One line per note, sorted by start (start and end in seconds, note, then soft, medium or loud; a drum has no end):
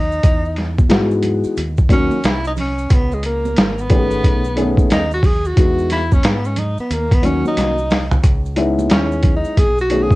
0.00 0.21 D#2 medium
0.00 0.80 D#4 medium
0.12 maracas soft
0.23 0.87 E2 loud
0.23 kick loud
0.23 closed hi-hat loud
0.23 maracas medium
0.45 maracas soft
0.56 snare soft
0.56 closed hi-hat medium
0.56 maracas soft
0.78 kick medium
0.78 high conga medium
0.78 maracas medium
0.89 1.42 G#2 medium
0.89 1.56 E3 medium
0.89 1.57 G#3 medium
0.89 1.57 B3 medium
0.89 1.57 D#4 medium
0.89 1.57 F#4 medium
0.89 snare loud
0.89 closed hi-hat medium
0.89 maracas medium
1.11 maracas soft
1.23 closed hi-hat medium
1.23 low conga medium
1.23 maracas soft
1.44 muted fingered electric bass stroke soft
1.44 maracas medium
1.57 2.09 D#2 medium
1.57 closed hi-hat medium
1.57 high conga soft
1.57 maracas medium
1.77 kick medium
1.77 maracas soft
1.89 2.16 D#3 medium
1.89 2.16 F#3 medium
1.89 2.16 A#3 medium
1.89 2.16 C#4 medium
1.89 2.27 C#4 medium
1.89 2.17 F#4 medium
1.89 kick medium
1.89 closed hi-hat medium
1.89 maracas soft
2.11 muted fingered electric bass stroke soft
2.11 high conga medium
2.11 maracas soft
2.24 2.87 C2 medium
2.24 2.46 E4 medium
2.24 snare loud
2.24 closed hi-hat medium
2.24 maracas medium
2.44 2.52 D#4 medium
2.44 maracas soft
2.57 2.95 C#4 medium
2.57 open hi-hat medium
2.57 low conga medium
2.57 maracas soft
2.78 maracas soft
2.90 3.54 C#2 loud
2.90 3.15 B3 medium
2.90 kick loud
2.90 closed hi-hat loud
2.90 maracas medium
3.12 3.25 G#3 medium
3.12 maracas soft
3.23 3.82 A#3 medium
3.23 closed hi-hat medium
3.23 maracas soft
3.45 high conga medium
3.45 maracas medium
3.56 4.20 G#1 medium
3.56 snare loud
3.56 closed hi-hat medium
3.56 maracas medium
3.78 4.79 B3 medium
3.78 maracas soft
3.89 4.40 D#3 medium
3.89 4.40 A3 medium
3.89 4.41 B3 medium
3.89 4.41 C#4 medium
3.89 3.99 G4 medium
3.89 kick loud
3.89 closed hi-hat medium
3.89 low conga medium
3.89 maracas soft
3.98 4.44 G#4 medium
4.11 maracas medium
4.24 4.76 B1 loud
4.24 kick medium
4.24 closed hi-hat medium
4.24 high conga soft
4.24 maracas medium
4.44 maracas soft
4.55 4.98 D#3 medium
4.55 4.98 A3 medium
4.55 4.99 B3 medium
4.55 4.99 C#4 medium
4.55 4.99 G#4 medium
4.55 closed hi-hat medium
4.55 maracas soft
4.77 kick medium
4.77 high conga medium
4.77 maracas soft
4.90 5.54 D#2 medium
4.90 5.11 D#4 loud
4.90 snare medium
4.90 closed hi-hat medium
4.90 maracas medium
5.11 5.28 F#4 loud
5.11 maracas soft
5.23 5.48 G#4 medium
5.23 kick medium
5.23 open hi-hat medium
5.23 low conga medium
5.23 maracas soft
5.45 5.91 F#4 loud
5.45 maracas soft
5.56 6.20 E2 loud
5.56 5.98 E3 medium
5.56 5.98 G#3 medium
5.56 5.99 B3 medium
5.56 5.99 D#4 medium
5.56 5.99 F#4 medium
5.56 kick loud
5.56 closed hi-hat loud
5.56 maracas medium
5.78 maracas soft
5.90 6.15 E4 loud
5.90 snare soft
5.90 closed hi-hat medium
5.90 maracas soft
6.12 6.27 C#4 loud
6.12 kick medium
6.12 high conga medium
6.12 maracas soft
6.23 6.76 G#2 loud
6.23 6.48 B3 medium
6.23 snare loud
6.23 closed hi-hat medium
6.23 maracas medium
6.45 6.61 C#4 medium
6.45 maracas soft
6.56 6.79 D#4 medium
6.56 closed hi-hat medium
6.56 low conga medium
6.56 maracas soft
6.78 6.94 B3 medium
6.78 muted fingered electric bass stroke medium
6.78 maracas medium
6.90 7.42 D#2 medium
6.90 7.15 A#3 medium
6.90 closed hi-hat medium
6.90 high conga soft
6.90 maracas medium
7.11 7.27 B3 loud
7.11 kick medium
7.11 closed hi-hat medium
7.11 maracas soft
7.22 7.73 D#3 medium
7.22 7.74 F#3 medium
7.22 7.74 A#3 medium
7.22 7.74 C#4 medium
7.22 7.46 C#4 medium
7.22 7.74 F#4 medium
7.22 closed hi-hat medium
7.22 maracas soft
7.45 8.09 D#4 medium
7.45 muted fingered electric bass stroke soft
7.45 high conga medium
7.45 maracas soft
7.57 8.20 C2 medium
7.57 snare medium
7.57 closed hi-hat medium
7.57 maracas medium
7.78 maracas soft
7.90 snare medium
7.90 open hi-hat medium
7.90 low conga medium
7.90 maracas soft
8.11 floor tom medium
8.11 maracas soft
8.24 8.87 C#2 loud
8.24 kick loud
8.24 closed hi-hat medium
8.24 maracas medium
8.46 maracas soft
8.56 9.52 G#3 medium
8.56 9.52 B3 medium
8.56 9.52 C#4 medium
8.56 9.52 D#4 medium
8.56 9.53 E4 medium
8.56 closed hi-hat medium
8.56 maracas soft
8.79 high conga medium
8.79 maracas medium
8.90 9.42 D#2 medium
8.90 9.33 C#4 medium
8.90 snare loud
8.90 closed hi-hat medium
8.90 maracas medium
9.12 maracas soft
9.23 kick medium
9.23 closed hi-hat medium
9.23 low conga medium
9.23 maracas soft
9.37 9.61 D#4 medium
9.45 muted fingered electric bass stroke soft
9.45 maracas soft
9.57 10.09 B1 loud
9.57 9.80 G#4 loud
9.57 kick medium
9.57 closed hi-hat loud
9.57 high conga soft
9.57 maracas medium
9.78 10.05 F#4 loud
9.78 maracas soft
9.90 10.15 D#3 medium
9.90 10.15 A3 medium
9.90 10.15 B3 medium
9.90 10.15 C#4 medium
9.90 10.15 G#4 medium
9.90 closed hi-hat medium
9.90 maracas soft
10.03 10.15 G#4 loud
10.11 kick loud
10.11 high conga medium
10.11 maracas soft